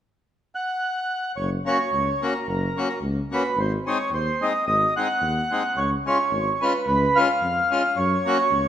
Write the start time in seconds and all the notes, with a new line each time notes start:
0.55 F#5
1.36 F#1 C#5
1.65 A#3 C#4 F#4 C#5
1.92 C#2
2.21 A#3 C#4 F#4 A#4
2.47 F#1 A#4
2.76 A#3 C#4 F#4
3.01 C#2
3.31 A#3 C#4 F#4 B4
3.56 G#1 C5
3.86 G#3 C4 D#4 C#5
4.11 D#2 C5
4.41 G#3 C4 D#4 D#5
4.67 G#1 D#5
4.96 G#3 C4 D#4 F#5
5.21 D#2
5.51 G#3 C4 D#4
5.76 C#2 C#5
6.05 G#3 C#4 F4 C#5
6.31 G#1
6.54 C#5
6.61 G#3 C#4 F4 B4
6.87 C#2 B4
7.16 G#3 C#4 F4 F5
7.42 F2
7.70 G#3 C#4 F4
7.96 F#2 C#5
8.25 A#3 C#4 F#4
8.50 C#2